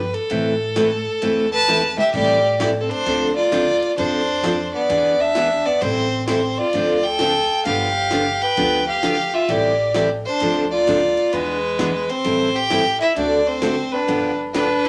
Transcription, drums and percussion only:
0.14 ride
0.30 ride
0.76 snare, hi-hat pedal, ride
1.22 ride
1.68 snare, hi-hat pedal
1.83 high tom
1.98 mid tom
2.14 kick, crash
2.60 snare, hi-hat pedal, ride
2.91 ride
3.06 ride
3.52 snare, hi-hat pedal, ride
3.83 ride
3.98 ride
4.44 snare, hi-hat pedal, ride
4.90 ride
5.35 snare, hi-hat pedal, ride
5.82 ride
6.28 snare, hi-hat pedal, ride
6.73 ride
7.19 snare, hi-hat pedal, ride
7.65 ride
8.11 snare, hi-hat pedal, ride
8.42 ride
8.57 ride
9.03 snare, hi-hat pedal, ride
9.49 ride
9.95 snare, hi-hat pedal, ride
10.40 ride
10.87 snare, hi-hat pedal, ride
11.17 ride
11.33 ride
11.79 snare, hi-hat pedal, ride
12.10 ride
12.25 ride
12.70 snare, hi-hat pedal, ride
13.01 ride
13.16 ride
13.62 snare, hi-hat pedal, ride
14.08 ride
14.55 snare, hi-hat pedal, ride
14.85 ride

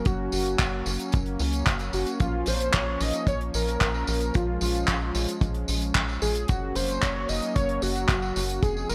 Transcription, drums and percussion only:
0.05 kick, closed hi-hat, tambourine
0.32 open hi-hat, tambourine
0.46 closed hi-hat, tambourine
0.59 kick, clap, closed hi-hat, tambourine
0.86 open hi-hat, tambourine
0.99 closed hi-hat, tambourine
1.12 kick, closed hi-hat, tambourine
1.26 closed hi-hat
1.39 open hi-hat, tambourine
1.53 closed hi-hat, tambourine
1.66 kick, clap, closed hi-hat, tambourine
1.79 closed hi-hat, tambourine
1.93 open hi-hat, tambourine
2.06 closed hi-hat, tambourine
2.20 kick, closed hi-hat, tambourine
2.46 open hi-hat, tambourine
2.60 closed hi-hat, tambourine
2.73 kick, clap, closed hi-hat, tambourine
3.00 open hi-hat, tambourine
3.13 closed hi-hat, tambourine
3.27 kick, closed hi-hat, tambourine
3.41 closed hi-hat
3.54 open hi-hat, tambourine
3.67 closed hi-hat, tambourine
3.80 kick, clap, closed hi-hat, tambourine
3.94 tambourine
4.07 open hi-hat, tambourine
4.21 closed hi-hat, tambourine
4.34 kick, closed hi-hat, tambourine
4.61 open hi-hat, tambourine
4.75 closed hi-hat, tambourine
4.88 kick, clap, closed hi-hat, tambourine
5.15 open hi-hat, tambourine
5.28 closed hi-hat, tambourine
5.41 kick, closed hi-hat, tambourine
5.54 closed hi-hat
5.68 open hi-hat, tambourine
5.82 closed hi-hat, tambourine
5.95 kick, clap, closed hi-hat, tambourine
6.09 tambourine
6.22 open hi-hat, tambourine
6.35 closed hi-hat, tambourine
6.48 kick, closed hi-hat, tambourine
6.75 open hi-hat, tambourine
6.88 closed hi-hat, tambourine
7.02 kick, clap, closed hi-hat, tambourine
7.29 open hi-hat, tambourine
7.42 closed hi-hat, tambourine
7.56 kick, closed hi-hat, tambourine
7.69 closed hi-hat
7.82 open hi-hat, tambourine
7.96 closed hi-hat, tambourine
8.09 kick, clap, closed hi-hat, tambourine
8.22 tambourine
8.36 open hi-hat, tambourine
8.49 closed hi-hat, tambourine
8.63 kick, closed hi-hat, tambourine
8.77 tambourine
8.89 open hi-hat, tambourine

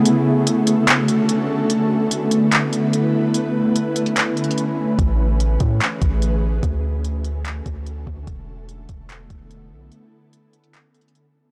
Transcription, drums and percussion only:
0.05 closed hi-hat
0.47 closed hi-hat
0.67 closed hi-hat
0.88 clap, closed hi-hat
1.08 closed hi-hat
1.29 closed hi-hat
1.70 closed hi-hat
2.11 closed hi-hat
2.31 closed hi-hat
2.52 clap, closed hi-hat
2.73 closed hi-hat
2.93 closed hi-hat
3.34 closed hi-hat
3.76 closed hi-hat
3.96 closed hi-hat, open hi-hat
4.06 closed hi-hat
4.16 clap, closed hi-hat
4.37 closed hi-hat
4.44 closed hi-hat
4.51 closed hi-hat
4.58 closed hi-hat
4.99 kick, closed hi-hat
5.40 closed hi-hat
5.60 kick, closed hi-hat
5.81 clap, closed hi-hat
6.02 kick, closed hi-hat
6.22 closed hi-hat
6.63 kick, closed hi-hat
7.04 closed hi-hat
7.24 closed hi-hat
7.45 clap, closed hi-hat
7.66 kick, closed hi-hat
7.86 closed hi-hat
8.07 kick
8.27 kick, closed hi-hat
8.69 closed hi-hat
8.89 kick, closed hi-hat
9.09 clap, closed hi-hat
9.30 kick, closed hi-hat
9.51 closed hi-hat
9.92 closed hi-hat
10.33 closed hi-hat
10.53 closed hi-hat, open hi-hat
10.64 closed hi-hat
10.74 clap, closed hi-hat
10.95 closed hi-hat
11.01 closed hi-hat
11.08 closed hi-hat
11.15 closed hi-hat

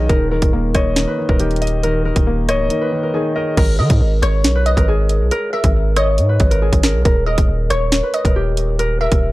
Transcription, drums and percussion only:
0.09 kick, closed hi-hat
0.42 kick, closed hi-hat
0.75 kick, cross-stick, closed hi-hat
0.96 snare, closed hi-hat
1.29 kick
1.40 closed hi-hat
1.51 closed hi-hat
1.56 closed hi-hat
1.62 closed hi-hat
1.67 closed hi-hat
1.83 closed hi-hat
2.16 kick, closed hi-hat
2.49 cross-stick, closed hi-hat
2.70 closed hi-hat
3.57 kick, closed hi-hat, crash
3.90 kick, closed hi-hat
4.23 cross-stick, closed hi-hat
4.44 snare, closed hi-hat
4.66 closed hi-hat
4.77 kick, closed hi-hat
5.09 closed hi-hat
5.31 closed hi-hat
5.64 kick, closed hi-hat
5.96 cross-stick, closed hi-hat
6.18 closed hi-hat
6.40 kick, closed hi-hat
6.51 closed hi-hat
6.73 kick, closed hi-hat
6.83 snare, closed hi-hat
7.05 kick, closed hi-hat
7.38 kick, closed hi-hat
7.70 cross-stick, closed hi-hat
7.92 snare, closed hi-hat
8.14 closed hi-hat
8.25 kick, closed hi-hat
8.57 closed hi-hat
8.79 closed hi-hat
9.12 kick, closed hi-hat

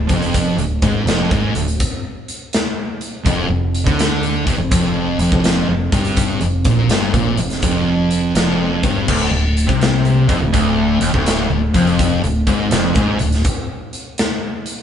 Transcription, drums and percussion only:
0.09 kick, closed hi-hat
0.22 closed hi-hat
0.34 kick, closed hi-hat
0.58 closed hi-hat
0.82 kick, closed hi-hat
1.07 snare, closed hi-hat
1.31 kick, closed hi-hat
1.55 closed hi-hat
1.68 closed hi-hat
1.80 kick, closed hi-hat
2.28 closed hi-hat
2.53 snare, closed hi-hat
3.01 closed hi-hat
3.26 kick, closed hi-hat
3.75 closed hi-hat
3.87 kick, closed hi-hat
3.99 snare, closed hi-hat
4.23 closed hi-hat
4.47 kick, closed hi-hat
4.71 kick, closed hi-hat
5.19 closed hi-hat
5.32 kick
5.44 snare, closed hi-hat
5.92 kick, closed hi-hat
6.05 closed hi-hat
6.17 kick, closed hi-hat
6.41 closed hi-hat
6.65 kick, closed hi-hat
6.90 snare, closed hi-hat
7.14 kick, closed hi-hat
7.37 closed hi-hat
7.50 snare, closed hi-hat
7.62 kick, closed hi-hat
8.11 closed hi-hat
8.35 snare, closed hi-hat
8.83 kick, closed hi-hat
9.08 kick, crash
9.57 closed hi-hat
9.69 kick, closed hi-hat
9.81 snare, closed hi-hat
10.05 closed hi-hat
10.29 kick, closed hi-hat
10.54 kick, closed hi-hat
11.01 closed hi-hat
11.14 kick
11.26 snare, closed hi-hat
11.74 kick, closed hi-hat
11.87 closed hi-hat
11.99 kick, closed hi-hat
12.24 closed hi-hat
12.47 kick, closed hi-hat
12.71 snare, closed hi-hat
12.95 kick, closed hi-hat
13.19 closed hi-hat
13.32 snare, closed hi-hat
13.44 kick, closed hi-hat
13.93 closed hi-hat
14.18 snare, closed hi-hat
14.66 closed hi-hat

